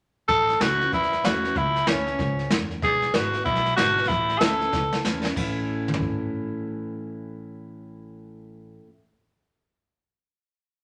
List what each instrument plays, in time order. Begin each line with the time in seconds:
0.28 upright bass A1, steel-string acoustic guitar A2, tenor saxophone A4, kick, snare
0.49 snare
0.60 upright bass C#2, steel-string acoustic guitar E3 A3 C#4 E4, tenor saxophone F#4, snare, hi-hat pedal
0.80 steel-string acoustic guitar C#4 E4, snare
0.92 steel-string acoustic guitar E2, upright bass E2, tenor saxophone E4, kick, snare
1.03 snare
1.12 snare
1.23 upright bass E2, steel-string acoustic guitar E3 A3 C#4 E4, tenor saxophone F#4, snare, hi-hat pedal
1.43 steel-string acoustic guitar C#4 E4, snare
1.55 upright bass C#2, steel-string acoustic guitar A2, tenor saxophone E4, kick, snare
1.76 snare
1.87 upright bass D2, steel-string acoustic guitar E3 A3 C#4 E4, tenor saxophone C#4, snare, hi-hat pedal
2.07 steel-string acoustic guitar C#4 E4, snare
2.19 upright bass C#2, steel-string acoustic guitar G#2, kick, snare
2.39 snare
2.50 upright bass E2, steel-string acoustic guitar F#2, snare, hi-hat pedal
2.71 snare
2.82 upright bass E1, steel-string acoustic guitar E2, tenor saxophone G#4, kick, snare
3.02 snare
3.14 upright bass G#1, steel-string acoustic guitar D3 G#3 B3 E4, tenor saxophone F#4, snare, hi-hat pedal
3.33 steel-string acoustic guitar B3 E4, snare
3.45 upright bass B1, steel-string acoustic guitar B2, tenor saxophone E4, kick, snare
3.55 snare
3.65 snare
3.77 upright bass G#1, steel-string acoustic guitar D3 G#3 B3 E4, tenor saxophone F#4, snare, hi-hat pedal
3.97 steel-string acoustic guitar B3 E4, snare
4.03 snare
4.08 upright bass A1, steel-string acoustic guitar A2, tenor saxophone E4, kick, snare
4.29 snare
4.39 upright bass D2, steel-string acoustic guitar E3 A3 C#4, tenor saxophone A4, snare, hi-hat pedal
4.43 steel-string acoustic guitar E4
4.61 steel-string acoustic guitar C#4 E4, snare
4.72 upright bass C#2, steel-string acoustic guitar E2, kick, snare
4.93 snare
5.04 upright bass E2, steel-string acoustic guitar E3 A3 C#4 E4, snare, hi-hat pedal
5.24 steel-string acoustic guitar C#4 E4, snare
5.36 upright bass A1, steel-string acoustic guitar A2 E3 A3 C#4 E4, kick, crash
5.88 mid tom
5.94 floor tom
6.00 kick